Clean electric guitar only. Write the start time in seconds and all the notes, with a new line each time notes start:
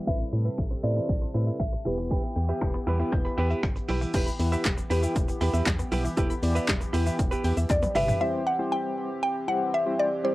0.07 C4 E4 B4
0.20 muted clean electric guitar stroke
0.33 muted clean electric guitar stroke
0.45 C4 E4 B4
0.58 muted clean electric guitar stroke
0.71 muted clean electric guitar stroke
0.83 C4 E4 B4
0.96 C4 E4 B4
1.09 muted clean electric guitar stroke
1.22 muted clean electric guitar stroke
1.34 C4 E4 B4
1.47 C4 E4 B4
1.73 muted clean electric guitar stroke
1.85 E4 G4 B4
1.98 muted clean electric guitar stroke
2.11 E4 G4 B4
2.24 muted clean electric guitar stroke
2.37 muted clean electric guitar stroke
2.49 E4 G4 B4
2.62 muted clean electric guitar stroke
2.74 muted clean electric guitar stroke
2.87 E4 G4 B4
3.00 E4 G4 B4
3.12 muted clean electric guitar stroke
3.25 muted clean electric guitar stroke
3.38 E4 G4 B4
3.50 E4 G4 B4
3.76 muted clean electric guitar stroke
3.89 E4 G4 B4
4.01 E4 G4 B4
4.14 E4 G4 B4
4.27 muted clean electric guitar stroke
4.40 muted clean electric guitar stroke
4.52 E4 G4 B4
4.65 muted clean electric guitar stroke
4.77 muted clean electric guitar stroke
4.90 E4 G4 B4
5.03 E4 G4 B4
5.28 muted clean electric guitar stroke
5.41 E4 G4 B4
5.54 E4 G4 B4
5.79 muted clean electric guitar stroke
5.92 E4 G4 B4
6.05 muted clean electric guitar stroke
6.17 E4 G4 B4
6.30 muted clean electric guitar stroke
6.42 muted clean electric guitar stroke
6.55 E4 G4 B4
6.68 muted clean electric guitar stroke
6.81 muted clean electric guitar stroke
6.93 E4 G4 B4
7.06 E4 G4 B4
7.31 E4 G4 B4
7.44 E4 G4 B4
7.57 muted clean electric guitar stroke
7.70 muted clean electric guitar stroke
7.83 muted clean electric guitar stroke
7.95 E4 G4 B4
8.08 E4 G4 B4